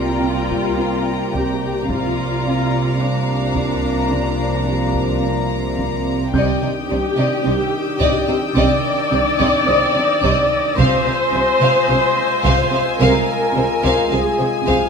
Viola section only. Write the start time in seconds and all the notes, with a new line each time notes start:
Already playing: F4
1.35 G4
1.90 F4
3.01 D4
6.34 G4
8.57 D5
10.79 C5
13.01 A#4
14.12 G#4